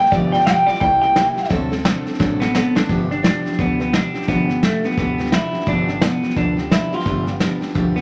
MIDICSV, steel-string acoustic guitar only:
0, 0, Header, 1, 2, 480
1, 0, Start_track
1, 0, Tempo, 347021
1, 162, Time_signature, 4, 2, 24, 8
1, 11082, End_track
2, 0, Start_track
2, 0, Title_t, "Steel-string acoustic guitar"
2, 0, Program_c, 0, 25
2, 0, Note_on_c, 0, 64, 50
2, 0, Note_on_c, 0, 67, 59
2, 2, Note_on_c, 0, 58, 44
2, 147, Note_on_c, 0, 43, 85
2, 151, Note_on_c, 0, 50, 87
2, 157, Note_on_c, 0, 53, 97
2, 158, Note_off_c, 0, 67, 0
2, 161, Note_off_c, 0, 58, 0
2, 166, Note_off_c, 0, 64, 0
2, 167, Note_on_c, 0, 59, 88
2, 172, Note_on_c, 0, 65, 94
2, 177, Note_on_c, 0, 67, 94
2, 430, Note_off_c, 0, 67, 0
2, 447, Note_on_c, 0, 67, 55
2, 448, Note_off_c, 0, 43, 0
2, 449, Note_off_c, 0, 50, 0
2, 449, Note_off_c, 0, 65, 0
2, 452, Note_off_c, 0, 53, 0
2, 457, Note_off_c, 0, 59, 0
2, 466, Note_on_c, 0, 65, 53
2, 475, Note_on_c, 0, 59, 43
2, 489, Note_on_c, 0, 53, 42
2, 616, Note_off_c, 0, 53, 0
2, 629, Note_off_c, 0, 59, 0
2, 632, Note_on_c, 0, 53, 66
2, 637, Note_off_c, 0, 67, 0
2, 640, Note_off_c, 0, 65, 0
2, 646, Note_on_c, 0, 59, 63
2, 673, Note_on_c, 0, 67, 70
2, 910, Note_off_c, 0, 67, 0
2, 926, Note_on_c, 0, 67, 60
2, 929, Note_off_c, 0, 53, 0
2, 936, Note_off_c, 0, 59, 0
2, 944, Note_on_c, 0, 65, 54
2, 956, Note_on_c, 0, 59, 52
2, 964, Note_on_c, 0, 53, 52
2, 1108, Note_on_c, 0, 48, 88
2, 1112, Note_off_c, 0, 53, 0
2, 1116, Note_off_c, 0, 67, 0
2, 1117, Note_on_c, 0, 55, 82
2, 1118, Note_off_c, 0, 59, 0
2, 1123, Note_on_c, 0, 58, 87
2, 1124, Note_off_c, 0, 65, 0
2, 1130, Note_on_c, 0, 64, 84
2, 1137, Note_on_c, 0, 67, 83
2, 1387, Note_off_c, 0, 67, 0
2, 1404, Note_on_c, 0, 67, 58
2, 1407, Note_off_c, 0, 48, 0
2, 1407, Note_off_c, 0, 64, 0
2, 1411, Note_off_c, 0, 55, 0
2, 1414, Note_off_c, 0, 58, 0
2, 1424, Note_on_c, 0, 64, 51
2, 1446, Note_on_c, 0, 58, 48
2, 1585, Note_off_c, 0, 58, 0
2, 1587, Note_on_c, 0, 55, 60
2, 1594, Note_off_c, 0, 67, 0
2, 1599, Note_off_c, 0, 64, 0
2, 1602, Note_on_c, 0, 58, 65
2, 1616, Note_on_c, 0, 64, 67
2, 1629, Note_on_c, 0, 67, 68
2, 1857, Note_off_c, 0, 67, 0
2, 1874, Note_on_c, 0, 67, 52
2, 1878, Note_off_c, 0, 64, 0
2, 1885, Note_off_c, 0, 55, 0
2, 1893, Note_off_c, 0, 58, 0
2, 1894, Note_on_c, 0, 64, 49
2, 1912, Note_on_c, 0, 58, 46
2, 2066, Note_on_c, 0, 50, 101
2, 2068, Note_off_c, 0, 67, 0
2, 2072, Note_on_c, 0, 54, 105
2, 2074, Note_off_c, 0, 58, 0
2, 2078, Note_off_c, 0, 64, 0
2, 2079, Note_on_c, 0, 60, 99
2, 2083, Note_on_c, 0, 62, 113
2, 2089, Note_on_c, 0, 69, 106
2, 2337, Note_off_c, 0, 69, 0
2, 2354, Note_on_c, 0, 69, 62
2, 2358, Note_off_c, 0, 62, 0
2, 2364, Note_off_c, 0, 50, 0
2, 2367, Note_off_c, 0, 54, 0
2, 2371, Note_off_c, 0, 60, 0
2, 2375, Note_on_c, 0, 62, 50
2, 2393, Note_on_c, 0, 60, 48
2, 2536, Note_off_c, 0, 60, 0
2, 2539, Note_on_c, 0, 54, 68
2, 2548, Note_off_c, 0, 69, 0
2, 2553, Note_on_c, 0, 60, 79
2, 2555, Note_off_c, 0, 62, 0
2, 2572, Note_on_c, 0, 62, 82
2, 2576, Note_on_c, 0, 69, 82
2, 2828, Note_off_c, 0, 69, 0
2, 2840, Note_off_c, 0, 54, 0
2, 2844, Note_on_c, 0, 69, 68
2, 2847, Note_off_c, 0, 60, 0
2, 2850, Note_off_c, 0, 62, 0
2, 2867, Note_on_c, 0, 62, 64
2, 2882, Note_on_c, 0, 60, 54
2, 3028, Note_on_c, 0, 50, 88
2, 3029, Note_off_c, 0, 60, 0
2, 3029, Note_off_c, 0, 62, 0
2, 3032, Note_off_c, 0, 69, 0
2, 3036, Note_on_c, 0, 54, 96
2, 3046, Note_on_c, 0, 60, 95
2, 3046, Note_on_c, 0, 62, 94
2, 3053, Note_on_c, 0, 69, 87
2, 3301, Note_off_c, 0, 69, 0
2, 3318, Note_on_c, 0, 69, 62
2, 3325, Note_off_c, 0, 50, 0
2, 3328, Note_off_c, 0, 54, 0
2, 3329, Note_off_c, 0, 62, 0
2, 3333, Note_off_c, 0, 60, 0
2, 3345, Note_on_c, 0, 62, 55
2, 3356, Note_on_c, 0, 60, 50
2, 3505, Note_on_c, 0, 54, 69
2, 3508, Note_off_c, 0, 60, 0
2, 3509, Note_off_c, 0, 69, 0
2, 3516, Note_off_c, 0, 62, 0
2, 3525, Note_on_c, 0, 60, 73
2, 3532, Note_on_c, 0, 62, 74
2, 3546, Note_on_c, 0, 69, 83
2, 3788, Note_off_c, 0, 69, 0
2, 3803, Note_off_c, 0, 54, 0
2, 3805, Note_on_c, 0, 69, 68
2, 3807, Note_off_c, 0, 62, 0
2, 3813, Note_off_c, 0, 60, 0
2, 3823, Note_on_c, 0, 62, 51
2, 3845, Note_on_c, 0, 60, 52
2, 3992, Note_off_c, 0, 69, 0
2, 3993, Note_on_c, 0, 43, 80
2, 4001, Note_off_c, 0, 62, 0
2, 4002, Note_on_c, 0, 50, 85
2, 4006, Note_on_c, 0, 53, 90
2, 4009, Note_off_c, 0, 60, 0
2, 4015, Note_on_c, 0, 59, 84
2, 4017, Note_on_c, 0, 62, 83
2, 4022, Note_on_c, 0, 67, 90
2, 4266, Note_off_c, 0, 67, 0
2, 4280, Note_off_c, 0, 62, 0
2, 4283, Note_on_c, 0, 67, 50
2, 4287, Note_off_c, 0, 43, 0
2, 4291, Note_off_c, 0, 50, 0
2, 4291, Note_off_c, 0, 59, 0
2, 4293, Note_off_c, 0, 53, 0
2, 4296, Note_on_c, 0, 62, 51
2, 4307, Note_on_c, 0, 59, 40
2, 4324, Note_on_c, 0, 53, 39
2, 4449, Note_off_c, 0, 53, 0
2, 4466, Note_on_c, 0, 53, 65
2, 4469, Note_off_c, 0, 59, 0
2, 4471, Note_off_c, 0, 67, 0
2, 4478, Note_off_c, 0, 62, 0
2, 4485, Note_on_c, 0, 59, 59
2, 4494, Note_on_c, 0, 62, 60
2, 4505, Note_on_c, 0, 67, 67
2, 4757, Note_off_c, 0, 67, 0
2, 4763, Note_off_c, 0, 53, 0
2, 4765, Note_off_c, 0, 62, 0
2, 4773, Note_off_c, 0, 59, 0
2, 4773, Note_on_c, 0, 67, 55
2, 4781, Note_on_c, 0, 62, 55
2, 4797, Note_on_c, 0, 59, 48
2, 4810, Note_on_c, 0, 53, 46
2, 4957, Note_off_c, 0, 67, 0
2, 4959, Note_on_c, 0, 43, 70
2, 4960, Note_off_c, 0, 53, 0
2, 4960, Note_off_c, 0, 62, 0
2, 4962, Note_off_c, 0, 59, 0
2, 4967, Note_on_c, 0, 50, 81
2, 4976, Note_on_c, 0, 53, 76
2, 4978, Note_on_c, 0, 59, 75
2, 4980, Note_on_c, 0, 62, 78
2, 4986, Note_on_c, 0, 67, 85
2, 5232, Note_off_c, 0, 67, 0
2, 5243, Note_off_c, 0, 62, 0
2, 5248, Note_on_c, 0, 67, 58
2, 5250, Note_off_c, 0, 43, 0
2, 5254, Note_off_c, 0, 50, 0
2, 5256, Note_off_c, 0, 59, 0
2, 5259, Note_off_c, 0, 53, 0
2, 5260, Note_on_c, 0, 62, 49
2, 5273, Note_on_c, 0, 59, 48
2, 5286, Note_on_c, 0, 53, 43
2, 5420, Note_off_c, 0, 53, 0
2, 5429, Note_off_c, 0, 59, 0
2, 5434, Note_off_c, 0, 67, 0
2, 5436, Note_on_c, 0, 53, 58
2, 5440, Note_off_c, 0, 62, 0
2, 5446, Note_on_c, 0, 59, 61
2, 5461, Note_on_c, 0, 62, 57
2, 5473, Note_on_c, 0, 67, 61
2, 5708, Note_off_c, 0, 67, 0
2, 5721, Note_off_c, 0, 62, 0
2, 5724, Note_on_c, 0, 67, 48
2, 5729, Note_off_c, 0, 53, 0
2, 5734, Note_off_c, 0, 59, 0
2, 5738, Note_on_c, 0, 62, 51
2, 5751, Note_on_c, 0, 59, 50
2, 5765, Note_on_c, 0, 53, 42
2, 5908, Note_off_c, 0, 53, 0
2, 5912, Note_off_c, 0, 67, 0
2, 5913, Note_off_c, 0, 59, 0
2, 5915, Note_on_c, 0, 43, 81
2, 5918, Note_on_c, 0, 50, 82
2, 5919, Note_off_c, 0, 62, 0
2, 5924, Note_on_c, 0, 53, 84
2, 5930, Note_on_c, 0, 59, 88
2, 5935, Note_on_c, 0, 62, 80
2, 5942, Note_on_c, 0, 67, 86
2, 6193, Note_off_c, 0, 67, 0
2, 6207, Note_off_c, 0, 62, 0
2, 6208, Note_off_c, 0, 43, 0
2, 6209, Note_on_c, 0, 67, 47
2, 6210, Note_off_c, 0, 50, 0
2, 6213, Note_off_c, 0, 53, 0
2, 6216, Note_off_c, 0, 59, 0
2, 6223, Note_on_c, 0, 62, 49
2, 6235, Note_on_c, 0, 59, 43
2, 6248, Note_on_c, 0, 53, 43
2, 6380, Note_off_c, 0, 53, 0
2, 6395, Note_off_c, 0, 67, 0
2, 6396, Note_on_c, 0, 53, 53
2, 6397, Note_off_c, 0, 59, 0
2, 6402, Note_off_c, 0, 62, 0
2, 6414, Note_on_c, 0, 59, 60
2, 6425, Note_on_c, 0, 62, 68
2, 6685, Note_off_c, 0, 62, 0
2, 6690, Note_off_c, 0, 53, 0
2, 6692, Note_on_c, 0, 67, 54
2, 6698, Note_off_c, 0, 59, 0
2, 6701, Note_on_c, 0, 62, 51
2, 6721, Note_on_c, 0, 59, 48
2, 6729, Note_on_c, 0, 53, 48
2, 6872, Note_off_c, 0, 53, 0
2, 6877, Note_off_c, 0, 67, 0
2, 6879, Note_on_c, 0, 43, 74
2, 6880, Note_off_c, 0, 59, 0
2, 6882, Note_off_c, 0, 62, 0
2, 6885, Note_on_c, 0, 50, 76
2, 6888, Note_on_c, 0, 53, 68
2, 6897, Note_on_c, 0, 59, 81
2, 6900, Note_on_c, 0, 62, 74
2, 6900, Note_on_c, 0, 67, 81
2, 7148, Note_off_c, 0, 67, 0
2, 7164, Note_on_c, 0, 67, 60
2, 7166, Note_off_c, 0, 62, 0
2, 7172, Note_off_c, 0, 43, 0
2, 7174, Note_off_c, 0, 50, 0
2, 7176, Note_off_c, 0, 53, 0
2, 7177, Note_off_c, 0, 59, 0
2, 7183, Note_on_c, 0, 62, 54
2, 7194, Note_on_c, 0, 59, 49
2, 7205, Note_on_c, 0, 53, 47
2, 7333, Note_off_c, 0, 53, 0
2, 7350, Note_off_c, 0, 59, 0
2, 7350, Note_on_c, 0, 53, 52
2, 7353, Note_off_c, 0, 67, 0
2, 7363, Note_off_c, 0, 62, 0
2, 7366, Note_on_c, 0, 59, 57
2, 7378, Note_on_c, 0, 62, 58
2, 7641, Note_on_c, 0, 67, 56
2, 7644, Note_off_c, 0, 62, 0
2, 7647, Note_off_c, 0, 53, 0
2, 7655, Note_off_c, 0, 59, 0
2, 7661, Note_on_c, 0, 62, 50
2, 7671, Note_on_c, 0, 59, 44
2, 7683, Note_on_c, 0, 53, 42
2, 7820, Note_off_c, 0, 53, 0
2, 7827, Note_off_c, 0, 59, 0
2, 7827, Note_on_c, 0, 43, 84
2, 7831, Note_off_c, 0, 62, 0
2, 7832, Note_off_c, 0, 67, 0
2, 7832, Note_on_c, 0, 50, 88
2, 7836, Note_on_c, 0, 53, 88
2, 7843, Note_on_c, 0, 59, 86
2, 7848, Note_on_c, 0, 62, 94
2, 7852, Note_on_c, 0, 67, 93
2, 8106, Note_off_c, 0, 67, 0
2, 8120, Note_off_c, 0, 62, 0
2, 8122, Note_on_c, 0, 67, 48
2, 8126, Note_off_c, 0, 43, 0
2, 8129, Note_off_c, 0, 50, 0
2, 8131, Note_off_c, 0, 53, 0
2, 8134, Note_off_c, 0, 59, 0
2, 8137, Note_on_c, 0, 62, 48
2, 8149, Note_on_c, 0, 59, 46
2, 8160, Note_on_c, 0, 53, 42
2, 8289, Note_off_c, 0, 53, 0
2, 8298, Note_off_c, 0, 59, 0
2, 8305, Note_on_c, 0, 53, 59
2, 8313, Note_off_c, 0, 67, 0
2, 8314, Note_off_c, 0, 62, 0
2, 8315, Note_on_c, 0, 59, 59
2, 8330, Note_on_c, 0, 62, 66
2, 8341, Note_on_c, 0, 67, 64
2, 8590, Note_off_c, 0, 67, 0
2, 8603, Note_off_c, 0, 62, 0
2, 8606, Note_off_c, 0, 53, 0
2, 8606, Note_on_c, 0, 67, 56
2, 8610, Note_off_c, 0, 59, 0
2, 8619, Note_on_c, 0, 62, 45
2, 8634, Note_on_c, 0, 59, 44
2, 8641, Note_on_c, 0, 53, 44
2, 8792, Note_off_c, 0, 53, 0
2, 8795, Note_on_c, 0, 43, 81
2, 8796, Note_off_c, 0, 67, 0
2, 8798, Note_off_c, 0, 59, 0
2, 8802, Note_off_c, 0, 62, 0
2, 8804, Note_on_c, 0, 50, 79
2, 8809, Note_on_c, 0, 53, 74
2, 8814, Note_on_c, 0, 59, 78
2, 8817, Note_on_c, 0, 62, 80
2, 8823, Note_on_c, 0, 67, 84
2, 9067, Note_off_c, 0, 67, 0
2, 9083, Note_on_c, 0, 67, 57
2, 9084, Note_off_c, 0, 62, 0
2, 9091, Note_off_c, 0, 43, 0
2, 9095, Note_off_c, 0, 50, 0
2, 9095, Note_off_c, 0, 59, 0
2, 9098, Note_off_c, 0, 53, 0
2, 9100, Note_on_c, 0, 62, 53
2, 9112, Note_on_c, 0, 59, 47
2, 9125, Note_on_c, 0, 53, 39
2, 9247, Note_off_c, 0, 53, 0
2, 9264, Note_on_c, 0, 53, 52
2, 9265, Note_off_c, 0, 59, 0
2, 9275, Note_off_c, 0, 67, 0
2, 9277, Note_off_c, 0, 62, 0
2, 9282, Note_on_c, 0, 59, 62
2, 9294, Note_on_c, 0, 62, 62
2, 9307, Note_on_c, 0, 67, 62
2, 9550, Note_off_c, 0, 67, 0
2, 9563, Note_off_c, 0, 62, 0
2, 9566, Note_off_c, 0, 53, 0
2, 9567, Note_on_c, 0, 67, 50
2, 9575, Note_off_c, 0, 59, 0
2, 9579, Note_on_c, 0, 62, 53
2, 9593, Note_on_c, 0, 59, 47
2, 9601, Note_on_c, 0, 53, 42
2, 9747, Note_off_c, 0, 53, 0
2, 9749, Note_on_c, 0, 43, 86
2, 9751, Note_off_c, 0, 59, 0
2, 9757, Note_off_c, 0, 67, 0
2, 9757, Note_on_c, 0, 50, 86
2, 9758, Note_off_c, 0, 62, 0
2, 9763, Note_on_c, 0, 53, 82
2, 9767, Note_on_c, 0, 59, 77
2, 9774, Note_on_c, 0, 62, 91
2, 9776, Note_on_c, 0, 67, 90
2, 10023, Note_off_c, 0, 67, 0
2, 10037, Note_off_c, 0, 62, 0
2, 10040, Note_on_c, 0, 67, 48
2, 10048, Note_off_c, 0, 59, 0
2, 10049, Note_off_c, 0, 43, 0
2, 10053, Note_off_c, 0, 50, 0
2, 10054, Note_on_c, 0, 62, 43
2, 10056, Note_off_c, 0, 53, 0
2, 10064, Note_on_c, 0, 59, 45
2, 10077, Note_on_c, 0, 53, 40
2, 10211, Note_off_c, 0, 53, 0
2, 10227, Note_off_c, 0, 59, 0
2, 10228, Note_on_c, 0, 53, 69
2, 10234, Note_off_c, 0, 67, 0
2, 10240, Note_off_c, 0, 62, 0
2, 10243, Note_on_c, 0, 59, 71
2, 10258, Note_on_c, 0, 62, 71
2, 10264, Note_on_c, 0, 67, 77
2, 10507, Note_off_c, 0, 67, 0
2, 10522, Note_off_c, 0, 62, 0
2, 10523, Note_on_c, 0, 67, 62
2, 10529, Note_off_c, 0, 53, 0
2, 10533, Note_off_c, 0, 59, 0
2, 10539, Note_on_c, 0, 62, 63
2, 10549, Note_on_c, 0, 59, 53
2, 10558, Note_on_c, 0, 53, 55
2, 10703, Note_off_c, 0, 53, 0
2, 10709, Note_off_c, 0, 59, 0
2, 10709, Note_on_c, 0, 43, 84
2, 10713, Note_off_c, 0, 62, 0
2, 10715, Note_on_c, 0, 50, 77
2, 10716, Note_off_c, 0, 67, 0
2, 10720, Note_on_c, 0, 53, 93
2, 10726, Note_on_c, 0, 59, 87
2, 10729, Note_on_c, 0, 62, 96
2, 10734, Note_on_c, 0, 67, 92
2, 10988, Note_off_c, 0, 67, 0
2, 11005, Note_on_c, 0, 67, 59
2, 11006, Note_off_c, 0, 62, 0
2, 11009, Note_off_c, 0, 43, 0
2, 11012, Note_off_c, 0, 50, 0
2, 11013, Note_off_c, 0, 59, 0
2, 11015, Note_off_c, 0, 53, 0
2, 11023, Note_on_c, 0, 62, 51
2, 11030, Note_on_c, 0, 59, 44
2, 11082, Note_off_c, 0, 59, 0
2, 11082, Note_off_c, 0, 62, 0
2, 11082, Note_off_c, 0, 67, 0
2, 11082, End_track
0, 0, End_of_file